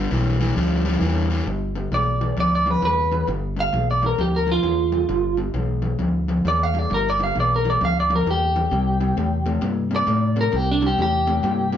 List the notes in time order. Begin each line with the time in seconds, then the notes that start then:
0.11 B1 G2 E3
0.40 G2 E3
0.56 D2 G2 F3
0.85 G2 F3
1.01 E2 G2 E3
1.30 G2 E3
1.46 G1 G2 D3
1.76 G2 D3
1.91 B1 G2 E3 D5
2.21 G2 E3
2.37 D2 G2 F3 D5
2.55 D5
2.66 G2 F3
2.71 B4
2.82 E2 G2 E3 B4
3.12 G2 E3
3.28 G1 G2 D3
3.57 G2 D3 F5
3.73 B1 G2 E3
3.91 D5
4.03 G2 E3 A#4
4.18 D2 G2 F3 G4
4.36 A#4
4.47 G2 F3
4.52 F4
4.63 E2 G2 E3
4.92 G2 E3
5.09 G1 G2 D3
5.37 G2 D3
5.54 B1 G2 E3
5.82 G2 E3
5.99 D2 G2 F3
6.28 G2 F3
6.45 E2 G2 E3 D5
6.63 F5
6.74 G2 E3
6.79 D5
6.90 G1 G2 D3
6.94 A#4
7.10 D5
7.19 G2 D3
7.24 F5
7.35 B1 G2 E3
7.40 D5
7.56 A#4
7.65 G2 E3
7.70 D5
7.81 D2 G2 F3 F5
8.00 D5
8.10 G2 F3
8.16 A#4
8.26 E2 G2 E3
8.31 G4
8.56 G2 E3
8.71 C2 C3 G3
9.01 C3 G3
9.17 E2 C3 A3
9.46 C3 A3
9.61 G2 C3 A#3
9.91 C3 A#3
9.96 D5
10.07 A2 C3 A3
10.36 C3 A3
10.41 A#4
10.52 C2 C3 G3
10.56 G4
10.72 D4
10.81 C3 G3
10.87 G4
10.98 E2 C3 A3 G4
11.27 C3 A3
11.43 G2 C3 A#3
11.73 C3 A#3